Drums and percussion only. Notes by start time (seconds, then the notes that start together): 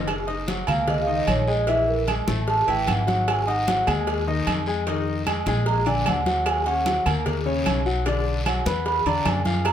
0.08 cowbell, high conga, low agogo, long guiro, claves
0.28 cowbell, high conga
0.48 cowbell, high conga, low agogo, short guiro
0.67 high conga, low conga, low agogo, short guiro, claves
0.87 cowbell, high conga, low conga, low agogo, long guiro
1.08 high conga
1.27 cowbell, high conga, low agogo, short guiro, claves
1.48 short guiro
1.67 cowbell, high conga, low agogo, long guiro
1.88 high conga
2.07 cowbell, high conga, low agogo, short guiro, claves
2.28 high conga, low agogo, short guiro
2.47 cowbell, high conga, long guiro
2.68 high conga, low agogo
2.87 cowbell, high conga, low agogo, short guiro, claves
3.07 cowbell, high conga, short guiro
3.28 cowbell, high conga, low agogo, long guiro, claves
3.48 cowbell, high conga
3.67 cowbell, high conga, low agogo, short guiro
3.87 high conga, low conga, low agogo, short guiro, claves
4.07 cowbell, high conga, low agogo, long guiro
4.28 high conga
4.47 cowbell, high conga, low agogo, short guiro, claves
4.66 short guiro
4.87 cowbell, high conga, low agogo, long guiro
5.08 high conga
5.27 cowbell, high conga, low agogo, short guiro, claves
5.46 high conga, low agogo, short guiro
5.66 cowbell, high conga, long guiro
5.86 high conga, low agogo
6.06 cowbell, high conga, low timbale, low agogo, short guiro, claves
6.26 cowbell, high conga, short guiro
6.46 cowbell, high conga, low agogo, long guiro, claves
6.66 cowbell, high conga
6.86 cowbell, high conga, low agogo, short guiro
7.06 high conga, low conga, low agogo, short guiro, claves
7.26 cowbell, high conga, low conga, low agogo, long guiro
7.47 high conga
7.66 cowbell, high conga, low agogo, short guiro, claves
7.86 short guiro
8.06 cowbell, high conga, low agogo, long guiro
8.26 high conga
8.45 cowbell, high conga, low agogo, short guiro, claves
8.66 high conga, low agogo, short guiro
8.86 cowbell, high conga, long guiro
9.06 high conga, low agogo
9.25 cowbell, high conga, low timbale, low agogo, short guiro, claves
9.45 cowbell, high conga, short guiro
9.65 cowbell, high conga, low agogo, long guiro, claves